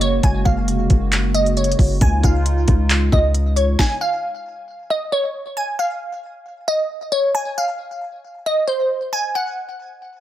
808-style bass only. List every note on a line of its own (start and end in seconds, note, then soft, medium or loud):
0.00 0.21 F#1 loud
0.23 0.45 F#1 loud
0.46 0.69 F#1 loud
0.68 0.89 F1 loud
0.90 1.75 F#1 loud
1.79 2.00 F#1 loud
2.01 2.23 C#2 loud
2.23 2.66 C#2 loud
2.68 3.11 C#2 loud
3.12 3.76 C#2 loud